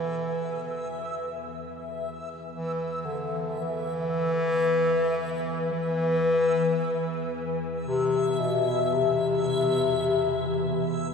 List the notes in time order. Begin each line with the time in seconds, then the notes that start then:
Already playing: E2 E3 E5
2.53 E3
3.05 D3
3.60 E3
5.73 E3
7.85 C3
8.39 B2
8.93 C3